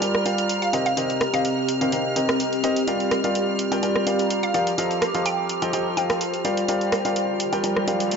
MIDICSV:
0, 0, Header, 1, 7, 480
1, 0, Start_track
1, 0, Key_signature, -2, "minor"
1, 0, Tempo, 476190
1, 979, Time_signature, 4, 2, 24, 8
1, 8231, End_track
2, 0, Start_track
2, 0, Title_t, "Violin section"
2, 0, Program_c, 0, 48
2, 0, Note_on_c, 0, 89, 81
2, 8231, Note_off_c, 0, 89, 0
2, 8231, End_track
3, 0, Start_track
3, 0, Title_t, "Synth pluck"
3, 0, Program_c, 1, 84
3, 626, Note_on_c, 1, 77, 86
3, 698, Note_off_c, 1, 77, 0
3, 739, Note_on_c, 1, 77, 71
3, 821, Note_off_c, 1, 77, 0
3, 867, Note_on_c, 1, 77, 92
3, 994, Note_off_c, 1, 77, 0
3, 1347, Note_on_c, 1, 77, 89
3, 1699, Note_off_c, 1, 77, 0
3, 4467, Note_on_c, 1, 77, 90
3, 4539, Note_off_c, 1, 77, 0
3, 4579, Note_on_c, 1, 77, 71
3, 4661, Note_off_c, 1, 77, 0
3, 5299, Note_on_c, 1, 79, 90
3, 5779, Note_off_c, 1, 79, 0
3, 6019, Note_on_c, 1, 79, 89
3, 6499, Note_off_c, 1, 79, 0
3, 8231, End_track
4, 0, Start_track
4, 0, Title_t, "Ambient pad"
4, 0, Program_c, 2, 92
4, 0, Note_on_c, 2, 67, 76
4, 0, Note_on_c, 2, 82, 89
4, 740, Note_on_c, 2, 60, 78
4, 1170, Note_on_c, 2, 75, 69
4, 1474, Note_off_c, 2, 82, 0
4, 2899, Note_off_c, 2, 75, 0
4, 3436, Note_on_c, 2, 82, 90
4, 3656, Note_on_c, 2, 86, 85
4, 3671, Note_off_c, 2, 60, 0
4, 4819, Note_off_c, 2, 82, 0
4, 4819, Note_on_c, 2, 65, 83
4, 4909, Note_on_c, 2, 72, 72
4, 5494, Note_off_c, 2, 67, 0
4, 5495, Note_off_c, 2, 86, 0
4, 5577, Note_on_c, 2, 79, 76
4, 6500, Note_on_c, 2, 67, 78
4, 6928, Note_on_c, 2, 74, 80
4, 7270, Note_off_c, 2, 65, 0
4, 7270, Note_off_c, 2, 72, 0
4, 7270, Note_off_c, 2, 79, 0
4, 7372, Note_on_c, 2, 82, 76
4, 8231, Note_off_c, 2, 67, 0
4, 8231, Note_off_c, 2, 74, 0
4, 8231, Note_off_c, 2, 82, 0
4, 8231, End_track
5, 0, Start_track
5, 0, Title_t, "Grand piano"
5, 0, Program_c, 3, 0
5, 18, Note_on_c, 3, 55, 74
5, 18, Note_on_c, 3, 65, 70
5, 18, Note_on_c, 3, 67, 70
5, 18, Note_on_c, 3, 70, 68
5, 18, Note_on_c, 3, 74, 68
5, 18, Note_on_c, 3, 79, 82
5, 231, Note_off_c, 3, 55, 0
5, 231, Note_off_c, 3, 65, 0
5, 231, Note_off_c, 3, 67, 0
5, 231, Note_off_c, 3, 70, 0
5, 231, Note_off_c, 3, 74, 0
5, 231, Note_off_c, 3, 79, 0
5, 257, Note_on_c, 3, 70, 66
5, 257, Note_on_c, 3, 74, 68
5, 258, Note_on_c, 3, 55, 72
5, 258, Note_on_c, 3, 65, 65
5, 258, Note_on_c, 3, 67, 67
5, 258, Note_on_c, 3, 77, 77
5, 711, Note_off_c, 3, 55, 0
5, 711, Note_off_c, 3, 65, 0
5, 711, Note_off_c, 3, 67, 0
5, 711, Note_off_c, 3, 70, 0
5, 711, Note_off_c, 3, 74, 0
5, 711, Note_off_c, 3, 77, 0
5, 738, Note_on_c, 3, 48, 85
5, 738, Note_on_c, 3, 63, 82
5, 738, Note_on_c, 3, 67, 78
5, 738, Note_on_c, 3, 70, 80
5, 738, Note_on_c, 3, 72, 79
5, 738, Note_on_c, 3, 75, 95
5, 903, Note_off_c, 3, 48, 0
5, 903, Note_off_c, 3, 63, 0
5, 903, Note_off_c, 3, 67, 0
5, 903, Note_off_c, 3, 70, 0
5, 903, Note_off_c, 3, 72, 0
5, 903, Note_off_c, 3, 75, 0
5, 978, Note_on_c, 3, 48, 85
5, 978, Note_on_c, 3, 63, 78
5, 978, Note_on_c, 3, 67, 78
5, 978, Note_on_c, 3, 70, 75
5, 978, Note_on_c, 3, 72, 78
5, 978, Note_on_c, 3, 75, 92
5, 1234, Note_off_c, 3, 48, 0
5, 1234, Note_off_c, 3, 63, 0
5, 1234, Note_off_c, 3, 67, 0
5, 1234, Note_off_c, 3, 70, 0
5, 1234, Note_off_c, 3, 72, 0
5, 1234, Note_off_c, 3, 75, 0
5, 1346, Note_on_c, 3, 63, 69
5, 1346, Note_on_c, 3, 67, 69
5, 1346, Note_on_c, 3, 70, 68
5, 1346, Note_on_c, 3, 72, 72
5, 1346, Note_on_c, 3, 75, 86
5, 1347, Note_on_c, 3, 48, 75
5, 1796, Note_off_c, 3, 48, 0
5, 1796, Note_off_c, 3, 63, 0
5, 1796, Note_off_c, 3, 67, 0
5, 1796, Note_off_c, 3, 70, 0
5, 1796, Note_off_c, 3, 72, 0
5, 1796, Note_off_c, 3, 75, 0
5, 1826, Note_on_c, 3, 48, 88
5, 1826, Note_on_c, 3, 63, 78
5, 1826, Note_on_c, 3, 67, 74
5, 1826, Note_on_c, 3, 70, 74
5, 1826, Note_on_c, 3, 72, 78
5, 1826, Note_on_c, 3, 77, 89
5, 1922, Note_off_c, 3, 48, 0
5, 1922, Note_off_c, 3, 63, 0
5, 1922, Note_off_c, 3, 67, 0
5, 1922, Note_off_c, 3, 70, 0
5, 1922, Note_off_c, 3, 72, 0
5, 1922, Note_off_c, 3, 77, 0
5, 1938, Note_on_c, 3, 48, 74
5, 1938, Note_on_c, 3, 63, 68
5, 1938, Note_on_c, 3, 67, 65
5, 1938, Note_on_c, 3, 70, 67
5, 1938, Note_on_c, 3, 72, 68
5, 1938, Note_on_c, 3, 77, 81
5, 2151, Note_off_c, 3, 77, 0
5, 2152, Note_off_c, 3, 48, 0
5, 2152, Note_off_c, 3, 63, 0
5, 2152, Note_off_c, 3, 67, 0
5, 2152, Note_off_c, 3, 70, 0
5, 2152, Note_off_c, 3, 72, 0
5, 2178, Note_on_c, 3, 48, 74
5, 2178, Note_on_c, 3, 63, 67
5, 2178, Note_on_c, 3, 67, 65
5, 2178, Note_on_c, 3, 70, 67
5, 2178, Note_on_c, 3, 75, 77
5, 2179, Note_on_c, 3, 72, 65
5, 2632, Note_off_c, 3, 48, 0
5, 2632, Note_off_c, 3, 63, 0
5, 2632, Note_off_c, 3, 67, 0
5, 2632, Note_off_c, 3, 70, 0
5, 2632, Note_off_c, 3, 72, 0
5, 2632, Note_off_c, 3, 75, 0
5, 2658, Note_on_c, 3, 63, 87
5, 2658, Note_on_c, 3, 67, 81
5, 2658, Note_on_c, 3, 70, 79
5, 2658, Note_on_c, 3, 72, 79
5, 2658, Note_on_c, 3, 75, 97
5, 2823, Note_off_c, 3, 63, 0
5, 2823, Note_off_c, 3, 67, 0
5, 2823, Note_off_c, 3, 70, 0
5, 2823, Note_off_c, 3, 72, 0
5, 2823, Note_off_c, 3, 75, 0
5, 2898, Note_on_c, 3, 55, 85
5, 2898, Note_on_c, 3, 65, 79
5, 2898, Note_on_c, 3, 67, 80
5, 2898, Note_on_c, 3, 70, 80
5, 2898, Note_on_c, 3, 74, 79
5, 2898, Note_on_c, 3, 77, 93
5, 3154, Note_off_c, 3, 55, 0
5, 3154, Note_off_c, 3, 65, 0
5, 3154, Note_off_c, 3, 67, 0
5, 3154, Note_off_c, 3, 70, 0
5, 3154, Note_off_c, 3, 74, 0
5, 3154, Note_off_c, 3, 77, 0
5, 3266, Note_on_c, 3, 55, 80
5, 3266, Note_on_c, 3, 65, 72
5, 3266, Note_on_c, 3, 67, 68
5, 3266, Note_on_c, 3, 70, 71
5, 3266, Note_on_c, 3, 74, 73
5, 3266, Note_on_c, 3, 77, 85
5, 3716, Note_off_c, 3, 55, 0
5, 3716, Note_off_c, 3, 65, 0
5, 3716, Note_off_c, 3, 67, 0
5, 3716, Note_off_c, 3, 70, 0
5, 3716, Note_off_c, 3, 74, 0
5, 3716, Note_off_c, 3, 77, 0
5, 3746, Note_on_c, 3, 55, 83
5, 3746, Note_on_c, 3, 65, 78
5, 3746, Note_on_c, 3, 67, 76
5, 3746, Note_on_c, 3, 70, 74
5, 3746, Note_on_c, 3, 74, 75
5, 3746, Note_on_c, 3, 79, 95
5, 3842, Note_off_c, 3, 55, 0
5, 3842, Note_off_c, 3, 65, 0
5, 3842, Note_off_c, 3, 67, 0
5, 3842, Note_off_c, 3, 70, 0
5, 3842, Note_off_c, 3, 74, 0
5, 3842, Note_off_c, 3, 79, 0
5, 3859, Note_on_c, 3, 55, 76
5, 3859, Note_on_c, 3, 65, 67
5, 3859, Note_on_c, 3, 67, 68
5, 3859, Note_on_c, 3, 70, 67
5, 3859, Note_on_c, 3, 74, 66
5, 3859, Note_on_c, 3, 79, 83
5, 4072, Note_off_c, 3, 55, 0
5, 4072, Note_off_c, 3, 65, 0
5, 4072, Note_off_c, 3, 67, 0
5, 4072, Note_off_c, 3, 70, 0
5, 4072, Note_off_c, 3, 74, 0
5, 4072, Note_off_c, 3, 79, 0
5, 4099, Note_on_c, 3, 55, 73
5, 4099, Note_on_c, 3, 65, 66
5, 4099, Note_on_c, 3, 67, 68
5, 4099, Note_on_c, 3, 70, 69
5, 4099, Note_on_c, 3, 74, 68
5, 4099, Note_on_c, 3, 77, 83
5, 4552, Note_off_c, 3, 55, 0
5, 4552, Note_off_c, 3, 65, 0
5, 4552, Note_off_c, 3, 67, 0
5, 4552, Note_off_c, 3, 70, 0
5, 4552, Note_off_c, 3, 74, 0
5, 4552, Note_off_c, 3, 77, 0
5, 4579, Note_on_c, 3, 53, 90
5, 4579, Note_on_c, 3, 65, 81
5, 4579, Note_on_c, 3, 67, 82
5, 4579, Note_on_c, 3, 70, 79
5, 4579, Note_on_c, 3, 74, 81
5, 4579, Note_on_c, 3, 77, 99
5, 4743, Note_off_c, 3, 67, 0
5, 4744, Note_off_c, 3, 53, 0
5, 4744, Note_off_c, 3, 65, 0
5, 4744, Note_off_c, 3, 70, 0
5, 4744, Note_off_c, 3, 74, 0
5, 4744, Note_off_c, 3, 77, 0
5, 4819, Note_on_c, 3, 53, 85
5, 4819, Note_on_c, 3, 65, 81
5, 4819, Note_on_c, 3, 69, 77
5, 4819, Note_on_c, 3, 72, 79
5, 4819, Note_on_c, 3, 75, 80
5, 4819, Note_on_c, 3, 77, 93
5, 5074, Note_off_c, 3, 65, 0
5, 5074, Note_off_c, 3, 69, 0
5, 5075, Note_off_c, 3, 53, 0
5, 5075, Note_off_c, 3, 72, 0
5, 5075, Note_off_c, 3, 75, 0
5, 5075, Note_off_c, 3, 77, 0
5, 5187, Note_on_c, 3, 53, 79
5, 5187, Note_on_c, 3, 65, 72
5, 5187, Note_on_c, 3, 69, 69
5, 5187, Note_on_c, 3, 72, 73
5, 5187, Note_on_c, 3, 75, 69
5, 5187, Note_on_c, 3, 77, 85
5, 5636, Note_off_c, 3, 53, 0
5, 5636, Note_off_c, 3, 65, 0
5, 5636, Note_off_c, 3, 69, 0
5, 5636, Note_off_c, 3, 72, 0
5, 5636, Note_off_c, 3, 75, 0
5, 5636, Note_off_c, 3, 77, 0
5, 5666, Note_on_c, 3, 53, 84
5, 5666, Note_on_c, 3, 65, 76
5, 5666, Note_on_c, 3, 69, 75
5, 5667, Note_on_c, 3, 72, 79
5, 5667, Note_on_c, 3, 75, 78
5, 5667, Note_on_c, 3, 79, 94
5, 5762, Note_off_c, 3, 53, 0
5, 5762, Note_off_c, 3, 65, 0
5, 5762, Note_off_c, 3, 69, 0
5, 5762, Note_off_c, 3, 72, 0
5, 5762, Note_off_c, 3, 75, 0
5, 5762, Note_off_c, 3, 79, 0
5, 5779, Note_on_c, 3, 53, 75
5, 5779, Note_on_c, 3, 65, 68
5, 5779, Note_on_c, 3, 69, 70
5, 5779, Note_on_c, 3, 72, 71
5, 5779, Note_on_c, 3, 75, 68
5, 5779, Note_on_c, 3, 79, 85
5, 5992, Note_off_c, 3, 53, 0
5, 5992, Note_off_c, 3, 65, 0
5, 5992, Note_off_c, 3, 69, 0
5, 5992, Note_off_c, 3, 72, 0
5, 5992, Note_off_c, 3, 75, 0
5, 5992, Note_off_c, 3, 79, 0
5, 6019, Note_on_c, 3, 53, 75
5, 6019, Note_on_c, 3, 65, 66
5, 6019, Note_on_c, 3, 69, 67
5, 6019, Note_on_c, 3, 72, 67
5, 6019, Note_on_c, 3, 75, 67
5, 6019, Note_on_c, 3, 77, 81
5, 6472, Note_off_c, 3, 53, 0
5, 6472, Note_off_c, 3, 65, 0
5, 6472, Note_off_c, 3, 69, 0
5, 6472, Note_off_c, 3, 72, 0
5, 6472, Note_off_c, 3, 75, 0
5, 6472, Note_off_c, 3, 77, 0
5, 6498, Note_on_c, 3, 55, 93
5, 6498, Note_on_c, 3, 65, 80
5, 6498, Note_on_c, 3, 67, 81
5, 6498, Note_on_c, 3, 70, 81
5, 6498, Note_on_c, 3, 74, 80
5, 6498, Note_on_c, 3, 77, 98
5, 6663, Note_off_c, 3, 55, 0
5, 6663, Note_off_c, 3, 65, 0
5, 6663, Note_off_c, 3, 67, 0
5, 6663, Note_off_c, 3, 70, 0
5, 6663, Note_off_c, 3, 74, 0
5, 6663, Note_off_c, 3, 77, 0
5, 6738, Note_on_c, 3, 67, 81
5, 6738, Note_on_c, 3, 70, 79
5, 6739, Note_on_c, 3, 55, 90
5, 6739, Note_on_c, 3, 65, 77
5, 6739, Note_on_c, 3, 74, 78
5, 6739, Note_on_c, 3, 77, 97
5, 6994, Note_off_c, 3, 67, 0
5, 6994, Note_off_c, 3, 70, 0
5, 6995, Note_off_c, 3, 55, 0
5, 6995, Note_off_c, 3, 65, 0
5, 6995, Note_off_c, 3, 74, 0
5, 6995, Note_off_c, 3, 77, 0
5, 7106, Note_on_c, 3, 65, 71
5, 7107, Note_on_c, 3, 55, 76
5, 7107, Note_on_c, 3, 67, 71
5, 7107, Note_on_c, 3, 70, 72
5, 7107, Note_on_c, 3, 74, 70
5, 7107, Note_on_c, 3, 77, 87
5, 7556, Note_off_c, 3, 55, 0
5, 7556, Note_off_c, 3, 65, 0
5, 7556, Note_off_c, 3, 67, 0
5, 7556, Note_off_c, 3, 70, 0
5, 7556, Note_off_c, 3, 74, 0
5, 7556, Note_off_c, 3, 77, 0
5, 7586, Note_on_c, 3, 55, 83
5, 7586, Note_on_c, 3, 65, 77
5, 7586, Note_on_c, 3, 67, 79
5, 7586, Note_on_c, 3, 70, 77
5, 7586, Note_on_c, 3, 74, 75
5, 7586, Note_on_c, 3, 79, 92
5, 7682, Note_off_c, 3, 55, 0
5, 7682, Note_off_c, 3, 65, 0
5, 7682, Note_off_c, 3, 67, 0
5, 7682, Note_off_c, 3, 70, 0
5, 7682, Note_off_c, 3, 74, 0
5, 7682, Note_off_c, 3, 79, 0
5, 7698, Note_on_c, 3, 65, 68
5, 7698, Note_on_c, 3, 74, 72
5, 7699, Note_on_c, 3, 55, 78
5, 7699, Note_on_c, 3, 67, 71
5, 7699, Note_on_c, 3, 70, 69
5, 7699, Note_on_c, 3, 79, 82
5, 7912, Note_off_c, 3, 55, 0
5, 7912, Note_off_c, 3, 65, 0
5, 7912, Note_off_c, 3, 67, 0
5, 7912, Note_off_c, 3, 70, 0
5, 7912, Note_off_c, 3, 74, 0
5, 7912, Note_off_c, 3, 79, 0
5, 7939, Note_on_c, 3, 55, 76
5, 7939, Note_on_c, 3, 65, 68
5, 7939, Note_on_c, 3, 67, 71
5, 7939, Note_on_c, 3, 70, 70
5, 7939, Note_on_c, 3, 74, 65
5, 7939, Note_on_c, 3, 77, 81
5, 8231, Note_off_c, 3, 55, 0
5, 8231, Note_off_c, 3, 65, 0
5, 8231, Note_off_c, 3, 67, 0
5, 8231, Note_off_c, 3, 70, 0
5, 8231, Note_off_c, 3, 74, 0
5, 8231, Note_off_c, 3, 77, 0
5, 8231, End_track
6, 0, Start_track
6, 0, Title_t, "Riser"
6, 0, Program_c, 4, 103
6, 6738, Note_on_c, 4, 60, 72
6, 8231, Note_off_c, 4, 60, 0
6, 8231, End_track
7, 0, Start_track
7, 0, Title_t, "Drums"
7, 19, Note_on_c, 9, 42, 73
7, 120, Note_off_c, 9, 42, 0
7, 147, Note_on_c, 9, 37, 58
7, 248, Note_off_c, 9, 37, 0
7, 259, Note_on_c, 9, 42, 72
7, 359, Note_off_c, 9, 42, 0
7, 387, Note_on_c, 9, 42, 50
7, 488, Note_off_c, 9, 42, 0
7, 498, Note_on_c, 9, 42, 73
7, 599, Note_off_c, 9, 42, 0
7, 626, Note_on_c, 9, 42, 33
7, 727, Note_off_c, 9, 42, 0
7, 738, Note_on_c, 9, 42, 74
7, 839, Note_off_c, 9, 42, 0
7, 866, Note_on_c, 9, 42, 47
7, 967, Note_off_c, 9, 42, 0
7, 979, Note_on_c, 9, 42, 72
7, 1080, Note_off_c, 9, 42, 0
7, 1107, Note_on_c, 9, 42, 33
7, 1208, Note_off_c, 9, 42, 0
7, 1219, Note_on_c, 9, 37, 72
7, 1219, Note_on_c, 9, 42, 68
7, 1320, Note_off_c, 9, 37, 0
7, 1320, Note_off_c, 9, 42, 0
7, 1347, Note_on_c, 9, 42, 51
7, 1448, Note_off_c, 9, 42, 0
7, 1459, Note_on_c, 9, 42, 70
7, 1560, Note_off_c, 9, 42, 0
7, 1699, Note_on_c, 9, 42, 69
7, 1800, Note_off_c, 9, 42, 0
7, 1827, Note_on_c, 9, 42, 47
7, 1928, Note_off_c, 9, 42, 0
7, 1939, Note_on_c, 9, 42, 72
7, 2040, Note_off_c, 9, 42, 0
7, 2179, Note_on_c, 9, 42, 74
7, 2279, Note_off_c, 9, 42, 0
7, 2307, Note_on_c, 9, 37, 82
7, 2307, Note_on_c, 9, 42, 45
7, 2408, Note_off_c, 9, 37, 0
7, 2408, Note_off_c, 9, 42, 0
7, 2419, Note_on_c, 9, 42, 69
7, 2520, Note_off_c, 9, 42, 0
7, 2547, Note_on_c, 9, 42, 33
7, 2647, Note_off_c, 9, 42, 0
7, 2659, Note_on_c, 9, 42, 71
7, 2760, Note_off_c, 9, 42, 0
7, 2787, Note_on_c, 9, 42, 46
7, 2887, Note_off_c, 9, 42, 0
7, 2899, Note_on_c, 9, 42, 72
7, 2999, Note_off_c, 9, 42, 0
7, 3027, Note_on_c, 9, 42, 32
7, 3127, Note_off_c, 9, 42, 0
7, 3139, Note_on_c, 9, 37, 75
7, 3139, Note_on_c, 9, 42, 71
7, 3240, Note_off_c, 9, 37, 0
7, 3240, Note_off_c, 9, 42, 0
7, 3267, Note_on_c, 9, 42, 49
7, 3367, Note_off_c, 9, 42, 0
7, 3379, Note_on_c, 9, 42, 71
7, 3480, Note_off_c, 9, 42, 0
7, 3619, Note_on_c, 9, 42, 70
7, 3720, Note_off_c, 9, 42, 0
7, 3747, Note_on_c, 9, 42, 48
7, 3848, Note_off_c, 9, 42, 0
7, 3859, Note_on_c, 9, 42, 71
7, 3960, Note_off_c, 9, 42, 0
7, 3987, Note_on_c, 9, 37, 62
7, 4088, Note_off_c, 9, 37, 0
7, 4100, Note_on_c, 9, 42, 73
7, 4201, Note_off_c, 9, 42, 0
7, 4227, Note_on_c, 9, 42, 48
7, 4328, Note_off_c, 9, 42, 0
7, 4339, Note_on_c, 9, 42, 72
7, 4440, Note_off_c, 9, 42, 0
7, 4467, Note_on_c, 9, 42, 33
7, 4568, Note_off_c, 9, 42, 0
7, 4579, Note_on_c, 9, 42, 75
7, 4680, Note_off_c, 9, 42, 0
7, 4707, Note_on_c, 9, 42, 47
7, 4808, Note_off_c, 9, 42, 0
7, 4820, Note_on_c, 9, 42, 74
7, 4920, Note_off_c, 9, 42, 0
7, 4947, Note_on_c, 9, 42, 33
7, 5048, Note_off_c, 9, 42, 0
7, 5059, Note_on_c, 9, 37, 77
7, 5059, Note_on_c, 9, 42, 73
7, 5160, Note_off_c, 9, 37, 0
7, 5160, Note_off_c, 9, 42, 0
7, 5187, Note_on_c, 9, 42, 52
7, 5287, Note_off_c, 9, 42, 0
7, 5299, Note_on_c, 9, 42, 72
7, 5400, Note_off_c, 9, 42, 0
7, 5538, Note_on_c, 9, 42, 73
7, 5639, Note_off_c, 9, 42, 0
7, 5667, Note_on_c, 9, 42, 51
7, 5767, Note_off_c, 9, 42, 0
7, 5779, Note_on_c, 9, 42, 78
7, 5880, Note_off_c, 9, 42, 0
7, 6019, Note_on_c, 9, 42, 76
7, 6120, Note_off_c, 9, 42, 0
7, 6147, Note_on_c, 9, 37, 83
7, 6147, Note_on_c, 9, 42, 47
7, 6248, Note_off_c, 9, 37, 0
7, 6248, Note_off_c, 9, 42, 0
7, 6259, Note_on_c, 9, 42, 73
7, 6359, Note_off_c, 9, 42, 0
7, 6386, Note_on_c, 9, 42, 34
7, 6487, Note_off_c, 9, 42, 0
7, 6499, Note_on_c, 9, 42, 75
7, 6600, Note_off_c, 9, 42, 0
7, 6627, Note_on_c, 9, 42, 49
7, 6727, Note_off_c, 9, 42, 0
7, 6738, Note_on_c, 9, 42, 80
7, 6839, Note_off_c, 9, 42, 0
7, 6867, Note_on_c, 9, 42, 34
7, 6968, Note_off_c, 9, 42, 0
7, 6979, Note_on_c, 9, 37, 77
7, 6979, Note_on_c, 9, 42, 80
7, 7079, Note_off_c, 9, 37, 0
7, 7079, Note_off_c, 9, 42, 0
7, 7107, Note_on_c, 9, 42, 52
7, 7207, Note_off_c, 9, 42, 0
7, 7218, Note_on_c, 9, 42, 75
7, 7319, Note_off_c, 9, 42, 0
7, 7459, Note_on_c, 9, 42, 80
7, 7560, Note_off_c, 9, 42, 0
7, 7587, Note_on_c, 9, 42, 55
7, 7687, Note_off_c, 9, 42, 0
7, 7699, Note_on_c, 9, 42, 74
7, 7800, Note_off_c, 9, 42, 0
7, 7827, Note_on_c, 9, 37, 61
7, 7928, Note_off_c, 9, 37, 0
7, 7939, Note_on_c, 9, 42, 76
7, 8040, Note_off_c, 9, 42, 0
7, 8067, Note_on_c, 9, 42, 54
7, 8168, Note_off_c, 9, 42, 0
7, 8179, Note_on_c, 9, 42, 76
7, 8231, Note_off_c, 9, 42, 0
7, 8231, End_track
0, 0, End_of_file